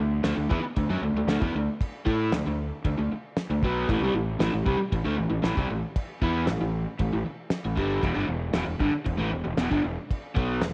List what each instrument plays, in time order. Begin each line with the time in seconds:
Already playing: overdriven electric guitar A3
0.00 fingered electric bass D2, overdriven electric guitar D3
0.23 fingered electric bass D2, overdriven electric guitar D3 A3, snare, crash
0.37 fingered electric bass D2, overdriven electric guitar D3 A3
0.49 fingered electric bass E2, overdriven electric guitar E3 B3, kick
0.63 muted fingered electric bass stroke, muted overdriven electric guitar stroke
0.76 fingered electric bass D2, overdriven electric guitar D3 A3, kick, crash
0.89 fingered electric bass F#2, overdriven electric guitar F#3 C#4
1.01 fingered electric bass D2, overdriven electric guitar D3 A3
1.13 fingered electric bass D2, overdriven electric guitar D3 A3
1.27 fingered electric bass D2, overdriven electric guitar D3 A3, snare, crash
1.41 fingered electric bass E2, overdriven electric guitar E3 B3, kick
1.55 fingered electric bass D2, overdriven electric guitar D3 A3
1.81 kick, crash
2.05 fingered electric bass A2, overdriven electric guitar A3 E4 A4, kick
2.32 fingered electric bass D2, overdriven electric guitar D3 A3, snare, crash
2.46 fingered electric bass D2, overdriven electric guitar D3 A3
2.84 fingered electric bass D2, overdriven electric guitar D3 A3, kick, crash
2.98 fingered electric bass D2, overdriven electric guitar D3 A3
3.12 muted overdriven electric guitar stroke, muted fingered electric bass stroke
3.37 snare, crash
3.50 fingered electric bass D2, overdriven electric guitar D3 A3
3.62 fingered electric bass B1, overdriven electric guitar B2 F#3 B3, kick
3.89 fingered electric bass A1, overdriven electric guitar A2 E3, kick, crash
4.00 fingered electric bass C2, overdriven electric guitar C3 G3
4.14 fingered electric bass A1, overdriven electric guitar A2 E3
4.39 fingered electric bass A1, overdriven electric guitar A2 E3, snare, crash
4.53 fingered electric bass A1, overdriven electric guitar A2 E3
4.66 fingered electric bass C2, overdriven electric guitar C3 G3, kick
4.79 muted overdriven electric guitar stroke, muted fingered electric bass stroke
4.92 fingered electric bass A1, overdriven electric guitar A2 E3, kick, crash
5.05 fingered electric bass D2, overdriven electric guitar D3 A3
5.18 fingered electric bass A1, overdriven electric guitar A2 E3
5.30 fingered electric bass A1, overdriven electric guitar A2 E3
5.43 fingered electric bass A1, overdriven electric guitar A2 E3, snare, crash
5.57 fingered electric bass C2, overdriven electric guitar C3 G3, kick
5.70 fingered electric bass A1, overdriven electric guitar A2 E3
5.96 kick, crash
6.22 fingered electric bass E2, overdriven electric guitar E3 B3 E4, kick
6.47 fingered electric bass A1, overdriven electric guitar A2 E3, snare, crash
6.61 fingered electric bass A1, overdriven electric guitar A2 E3
6.99 fingered electric bass A1, overdriven electric guitar A2 E3, kick, crash
7.13 fingered electric bass A1, overdriven electric guitar A2 E3
7.26 muted overdriven electric guitar stroke, muted fingered electric bass stroke
7.50 snare, crash
7.65 fingered electric bass A1, overdriven electric guitar A2 E3
7.76 fingered electric bass G1, overdriven electric guitar G2 D3 G3, kick
8.02 fingered electric bass E1, overdriven electric guitar E2 B2, kick, crash
8.15 fingered electric bass G1, overdriven electric guitar G2 D3
8.27 fingered electric bass E1, overdriven electric guitar E2 B2
8.54 fingered electric bass E1, overdriven electric guitar E2 B2, snare, crash
8.66 fingered electric bass E1, overdriven electric guitar E2 B2
8.80 fingered electric bass G1, overdriven electric guitar G2 D3, kick
8.91 muted overdriven electric guitar stroke, muted fingered electric bass stroke
9.05 fingered electric bass E1, overdriven electric guitar E2 B2, kick, crash
9.17 fingered electric bass A1, overdriven electric guitar A2 E3
9.30 fingered electric bass E1, overdriven electric guitar E2 B2
9.44 fingered electric bass E1, overdriven electric guitar E2 B2
9.57 fingered electric bass E1, overdriven electric guitar E2 B2, snare, crash
9.70 fingered electric bass G1, overdriven electric guitar G2 D3, kick
9.84 fingered electric bass E1, overdriven electric guitar E2 B2
10.11 kick, crash
10.34 fingered electric bass B1, overdriven electric guitar B2 F#3 B3, kick
10.61 fingered electric bass E1, overdriven electric guitar E2 B2, snare, crash